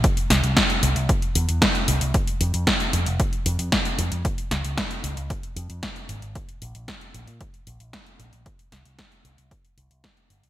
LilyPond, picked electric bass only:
\new Staff \with { instrumentName = "Picked electric bass" } { \clef bass \time 4/4 \key c \phrygian \tempo 4 = 114 r8 c,16 c,16 r8 c,16 c,16 r8 e,16 e,16 r8 c,16 c,16 | r8 f,16 f,16 r8 f,16 f,,16 r8 f,16 f,16 r8 f,16 f,16 | r8 des,16 des,16 r8 des,16 des,16 r8 f,16 f,16 r8 aes,,16 aes,,16 | r8 bes,,16 bes,,16 r8 bes,,16 bes,16 r8 bes,,16 bes,,16 r8 bes,,16 bes,,16 |
r8 c,16 c,16 r8 c,16 c,16 r8 c,16 c,16 r8 g,,16 c,16 | }